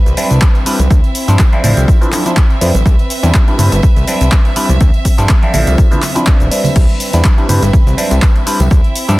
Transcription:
Already playing: violin section C4 B4 E5
0.06 analog synth bass C2, closed hi-hat, tambourine, shaker
0.17 clav G3 C4 D4 E4 B4, open hi-hat, high conga, shaker
0.30 analog synth bass C2, closed hi-hat, tambourine, shaker
0.42 kick, clap, closed hi-hat, shaker
0.55 closed hi-hat, tambourine
0.66 clav G3 C4 D4 E4 B4, open hi-hat, shaker
0.79 analog synth bass C2, closed hi-hat, tambourine, high conga, shaker
0.90 analog synth bass D2, violin section E4 E5, kick, closed hi-hat, tambourine, shaker
1.04 closed hi-hat, tambourine
1.15 open hi-hat, shaker
1.28 analog synth bass G2, clav F3 C4 D4 E4 A4, closed hi-hat, tambourine, shaker
1.39 kick, clap, closed hi-hat, tambourine, high conga, shaker
1.52 clav F3 C4 D4 E4 A4, closed hi-hat, tambourine
1.63 analog synth bass A1, clav F3 C4 D4 E4 A4, open hi-hat, low conga, shaker
1.77 analog synth bass C2, closed hi-hat, tambourine, shaker
1.88 kick, closed hi-hat, tambourine, shaker
2.01 clav F3 C4 D4 E4 B4, closed hi-hat, tambourine, shaker
2.12 clav F3 C4 D4 E4 A4, clap, open hi-hat, high conga, shaker
2.26 clav F3 C4 D4 E4 C5, closed hi-hat, tambourine, shaker
2.37 kick, clap, closed hi-hat, shaker
2.50 closed hi-hat, tambourine
2.61 analog synth bass F2, clav F3 C4 D4 E4 B4, open hi-hat, shaker
2.74 analog synth bass A1, closed hi-hat, tambourine, high conga, shaker
2.86 analog synth bass C2, violin section B4, kick, closed hi-hat, tambourine, shaker
2.99 closed hi-hat, tambourine
3.10 open hi-hat, shaker
3.23 analog synth bass E2, clav G3 C4 D4 E4 B4, closed hi-hat, tambourine, shaker
3.34 kick, clap, closed hi-hat, tambourine, high conga, shaker
3.47 clav G3 C4 D4 E4 B4, closed hi-hat, tambourine
3.58 analog synth bass G2, clav G3 C4 D4 E4 B4, open hi-hat, low conga, shaker
3.72 analog synth bass G1, closed hi-hat, tambourine, shaker
3.83 analog synth bass C2, kick, closed hi-hat, tambourine, shaker
3.96 analog synth bass C2, closed hi-hat, tambourine, shaker
4.07 clav G3 C4 D4 E4 B4, open hi-hat, high conga, shaker
4.21 analog synth bass C2, closed hi-hat, tambourine, shaker
4.32 kick, clap, closed hi-hat, shaker
4.45 closed hi-hat, tambourine
4.56 clav G3 C4 D4 E4 B4, open hi-hat, shaker
4.69 analog synth bass C2, closed hi-hat, tambourine, high conga, shaker
4.81 analog synth bass D2, kick, closed hi-hat, tambourine, shaker
4.94 closed hi-hat, tambourine
5.05 kick, open hi-hat, shaker
5.18 analog synth bass G2, clav F3 C4 D4 E4 A4, closed hi-hat, tambourine, shaker
5.29 kick, clap, closed hi-hat, tambourine, high conga, shaker
5.42 clav F3 C4 D4 E4 A4, closed hi-hat, tambourine
5.53 analog synth bass A1, clav F3 C4 D4 E4 A4, open hi-hat, low conga, shaker
5.67 analog synth bass C2, closed hi-hat, tambourine, shaker
5.78 kick, closed hi-hat, tambourine, shaker
5.91 clav F3 C4 D4 E4 B4, closed hi-hat, tambourine, low conga, shaker
6.02 clap, open hi-hat, high conga, shaker
6.15 clav F3 C4 D4 E4 B4, closed hi-hat, tambourine, shaker
6.27 kick, clap, closed hi-hat, shaker
6.40 analog synth bass D1, closed hi-hat, tambourine, shaker
6.50 clav G3 C4 D4 E4 B4, open hi-hat, shaker
6.64 open hi-hat, tambourine, high conga, low conga, shaker
6.76 analog synth bass C2, violin section C4 B4, kick, closed hi-hat, crash, shaker
6.89 closed hi-hat, tambourine
7.00 open hi-hat, shaker
7.13 analog synth bass E2, clav G3 C4 D4 E4 B4, closed hi-hat, tambourine, shaker
7.24 kick, clap, closed hi-hat, tambourine, high conga, shaker
7.38 clav G3 C4 D4 E4 B4, closed hi-hat, tambourine
7.48 analog synth bass G2, clav G3 C4 D4 E4 B4, open hi-hat, low conga, shaker
7.62 analog synth bass G1, closed hi-hat, tambourine, shaker
7.73 analog synth bass C2, kick, closed hi-hat, tambourine, shaker
7.86 analog synth bass C2, closed hi-hat, tambourine, shaker
7.97 clav G3 C4 D4 E4 B4, open hi-hat, high conga, shaker
8.11 analog synth bass C2, closed hi-hat, tambourine, shaker
8.22 kick, clap, closed hi-hat, tambourine, shaker
8.36 closed hi-hat, tambourine
8.46 clav G3 C4 D4 E4 B4, open hi-hat, shaker
8.59 analog synth bass C2, closed hi-hat, tambourine, high conga, shaker
8.70 analog synth bass D2, violin section C4 E4 E5, kick, closed hi-hat, tambourine, shaker
8.84 closed hi-hat, tambourine
8.95 open hi-hat, shaker
9.08 analog synth bass G2, clav F3 C4 D4 E4 A4, closed hi-hat, tambourine, shaker

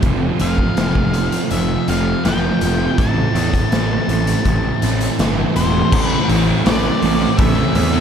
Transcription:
0.02 picked electric bass F1, distorted electric guitar F2 C3 F3, overdriven electric guitar F3 A3 C4 F4, kick, closed hi-hat
0.39 picked electric bass F1, distorted electric guitar C3 F3, overdriven electric guitar A3 C4 F4, lead electric guitar F5, closed hi-hat
0.58 kick
0.75 picked electric bass F1, distorted electric guitar F2 C3 F3, overdriven electric guitar F3 A3 C4, snare, closed hi-hat
0.79 overdriven electric guitar F4
0.95 kick
1.13 distorted electric guitar F3, closed hi-hat
1.17 distorted electric guitar C3
1.32 closed hi-hat
1.50 picked electric bass F1, distorted electric guitar F2 C3 F3, lead electric guitar E5, closed hi-hat
1.88 picked electric bass F1, distorted electric guitar C3 F3, overdriven electric guitar A3 C4 F4, lead electric guitar F5, closed hi-hat
2.24 picked electric bass F1, distorted electric guitar F2 C3 F3, overdriven electric guitar F3 A3 C4 F4, lead electric guitar G5, snare, closed hi-hat
2.61 picked electric bass F1, distorted electric guitar C3 F3, overdriven electric guitar A3 C4 F4, closed hi-hat
2.98 picked electric bass A1, overdriven electric guitar A2 E3 A3 C4 E4, distorted electric guitar A2 E3, lead electric guitar A5, kick, closed hi-hat
3.02 distorted electric guitar A3
3.35 picked electric bass E2, distorted electric guitar A3, overdriven electric guitar A3 C4 E4, closed hi-hat
3.39 distorted electric guitar E3
3.54 kick, closed hi-hat
3.70 picked electric bass A1, distorted electric guitar A2 E3 A3, overdriven electric guitar E3 A3 C4, snare, closed hi-hat
3.75 overdriven electric guitar E4
4.07 picked electric bass A1, distorted electric guitar E3 A3, closed hi-hat
4.27 closed hi-hat
4.44 picked electric bass A1, distorted electric guitar A2 E3 A3, kick, closed hi-hat
4.80 picked electric bass A1, distorted electric guitar E3 A3, overdriven electric guitar E4, closed hi-hat
4.84 overdriven electric guitar A3 C4
5.01 closed hi-hat
5.17 picked electric bass G1, distorted electric guitar A2 E3 A3, overdriven electric guitar E3 A3, snare, closed hi-hat
5.21 overdriven electric guitar C4 E4
5.54 picked electric bass E1, distorted electric guitar E3 A3, overdriven electric guitar C4 E4, lead electric guitar C5, closed hi-hat
5.58 overdriven electric guitar A3
5.89 picked electric bass A1, distorted electric guitar A2 E3 A3, overdriven electric guitar A2 E3 A3, kick, crash
5.94 overdriven electric guitar C4 E4
6.04 lead electric guitar B4
6.29 picked electric bass A1, overdriven electric guitar E3 A3 C4 E4, open hi-hat
6.45 distorted electric guitar E3 A3, overdriven electric guitar C4 E4
6.50 overdriven electric guitar A3
6.63 picked electric bass A1, distorted electric guitar A2 E3 A3, overdriven electric guitar A2 E3 A3 C4, lead electric guitar D5, snare, open hi-hat
6.68 overdriven electric guitar E4
7.01 picked electric bass A1, distorted electric guitar A2 E3 A3, overdriven electric guitar E3 A3 C4, open hi-hat
7.05 overdriven electric guitar E4
7.19 overdriven electric guitar A3 C4 E4, muted distorted electric guitar stroke
7.38 picked electric bass A1, lead electric guitar E5, kick, open hi-hat
7.55 distorted electric guitar E3 A3, overdriven electric guitar C4 E4
7.59 overdriven electric guitar A3
7.75 picked electric bass E2, muted distorted electric guitar stroke, open hi-hat
7.93 distorted electric guitar E3 A3, overdriven electric guitar A3 C4 E4

